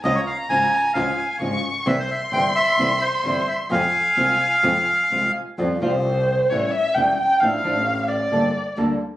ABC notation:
X:1
M:4/4
L:1/16
Q:1/4=131
K:Fm
V:1 name="Violin"
b8 a4 d'4 | c'16 | a12- a2 z2 | [K:F] z2 c6 ^c2 e2 g2 g2 |
f6 d6 z4 |]
V:2 name="Bandoneon"
e d f2 a4 f4 z4 | =e c e2 g2 e4 c4 e2 | f12- f2 z2 | [K:F] z16 |
z16 |]
V:3 name="Nylon-string guitar" clef=bass
[D,F,A,DF]2 z2 [D,F,A,DF]2 z2 [D,F,A,DF]2 z2 [D,F,A,DF]2 z2 | [C,=E,G,C=E]2 z2 [C,E,G,CE]2 z2 [C,E,G,CE]2 z2 [C,E,G,CE]2 z2 | [C,F,A,CF]2 z2 [C,F,A,CF]2 z2 [C,F,A,CF]2 z2 [C,F,A,CF]2 z2 | [K:F] [F,G,CF]2 [F,G,CF]2 z4 [E,G,^CE]2 z2 [E,G,CE]2 z2 |
[F,A,DE]2 [F,A,DE]2 z4 [D,G,B,DA]2 z2 [D,G,B,DA]2 z2 |]
V:4 name="Double bass" clef=bass
D,,2 z2 A,,,2 z2 D,,2 z2 A,,,2 z2 | C,,2 z2 G,,,2 z2 C,,2 z2 G,,,2 z2 | F,,2 z2 C,,2 z2 F,,2 z2 C,,2 z2 | [K:F] F,,2 C,,6 A,,,2 z2 E,,,2 z2 |
A,,,2 A,,,6 G,,,2 z2 D,,2 z2 |]